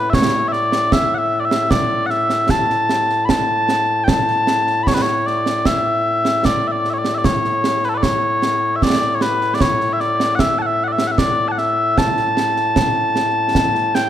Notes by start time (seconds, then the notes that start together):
Already playing: A2
0.10 E5, concert bass drum, snare
0.14 C#5
0.33 snare
0.48 E5
0.53 D5, snare
0.72 snare
0.92 E5, concert bass drum, snare
1.14 E5 F#5
1.40 D5
1.45 E5
1.51 snare
1.71 D5, concert bass drum, snare
2.06 F#5, snare
2.10 E5
2.30 snare
2.49 A5, concert bass drum, snare
2.70 snare
2.89 snare
3.09 snare
3.25 B5, concert bass drum, snare
3.30 A5
3.69 snare
4.04 G5, concert bass drum, snare
4.09 A5
4.28 snare
4.47 snare
4.67 snare
4.83 B5, concert bass drum, snare
4.88 C#5
4.94 B4
5.02 C#5
5.07 snare
5.26 D5, snare
5.46 snare
5.65 E5, concert bass drum, snare
6.25 snare
6.45 D5, concert bass drum, snare
6.68 E5
6.72 D5
6.85 snare
6.90 C#5 E5
6.98 D5
7.05 snare
7.15 D5 E5
7.24 C#5, concert bass drum, snare
7.45 snare
7.64 snare
7.83 B4, snare
7.89 A4
7.94 B4 D5
8.03 C#5, concert bass drum, snare
8.42 snare
8.76 E5
8.82 D5, concert bass drum, snare
9.02 snare
9.15 C#5
9.21 B4, snare
9.41 snare
9.54 D5
9.61 C#5, concert bass drum, snare
9.81 snare
9.93 E5
10.00 D5, snare
10.20 snare
10.35 F#5, concert bass drum, snare
10.40 E5
10.59 F#5 A5
10.66 E5
10.84 F#5
10.88 D5
10.93 E5
10.98 snare
11.07 F#5
11.12 E5
11.18 D5, concert bass drum, snare
11.48 F#5 A5
11.58 E5, snare
11.98 A5, concert bass drum, snare
12.17 snare
12.37 snare
12.56 snare
12.76 concert bass drum, snare
13.16 snare
13.55 concert bass drum, snare
13.75 snare
13.95 G5, snare